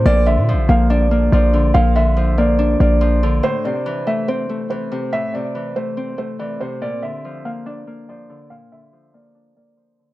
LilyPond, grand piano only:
\new Staff \with { instrumentName = "Grand piano" } { \time 4/4 \key a \phrygian \tempo 4 = 142 d''8 e''4 f''8 d''4 d''4 | f''8 e''4 d''4 d''4. | c''8 d''4 e''8 c''4 c''4 | e''8 d''4 c''4 c''8 d''8 c''8 |
d''8 e''4 f''8 d''4 d''4 | f''8 e''4 d''4 d''4. | }